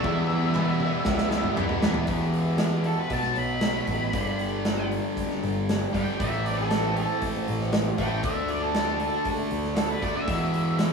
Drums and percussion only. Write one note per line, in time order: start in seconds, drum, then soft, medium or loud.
0.03 kick loud
0.03 high tom medium
0.30 high tom medium
0.55 clap medium
0.55 mid tom medium
0.80 mid tom medium
1.05 kick loud
1.05 snare loud
1.18 snare medium
1.31 snare medium
1.44 mid tom medium
1.57 clap medium
1.57 floor tom loud
1.69 floor tom medium
1.82 snare loud
1.94 floor tom medium
2.07 kick loud
2.07 open hi-hat medium
2.34 open hi-hat medium
2.58 snare medium
2.58 open hi-hat medium
2.84 open hi-hat medium
3.10 kick medium
3.10 open hi-hat medium
3.23 snare soft
3.36 open hi-hat medium
3.61 snare loud
3.61 open hi-hat medium
3.87 kick medium
3.87 open hi-hat medium
4.13 kick loud
4.13 open hi-hat medium
4.39 open hi-hat medium
4.65 snare medium
4.65 open hi-hat medium
4.92 open hi-hat soft
5.17 kick medium
5.17 open hi-hat medium
5.31 snare soft
5.43 open hi-hat medium
5.69 snare medium
5.69 open hi-hat medium
5.94 kick medium
5.94 open hi-hat medium
6.20 kick loud
6.20 open hi-hat medium
6.46 open hi-hat medium
6.71 snare medium
6.71 open hi-hat medium
6.97 open hi-hat medium
7.22 kick medium
7.22 open hi-hat medium
7.48 open hi-hat medium
7.61 snare soft
7.73 snare loud
7.73 open hi-hat medium
7.98 kick medium
7.98 open hi-hat medium
8.23 kick loud
8.23 open hi-hat medium
8.48 open hi-hat soft
8.74 snare medium
8.74 open hi-hat medium
9.00 open hi-hat medium
9.25 kick medium
9.25 open hi-hat medium
9.51 open hi-hat medium
9.64 snare soft
9.76 snare loud
9.76 open hi-hat medium
10.02 kick medium
10.02 open hi-hat medium
10.28 kick loud
10.28 open hi-hat medium
10.54 open hi-hat medium
10.79 snare medium
10.79 open hi-hat medium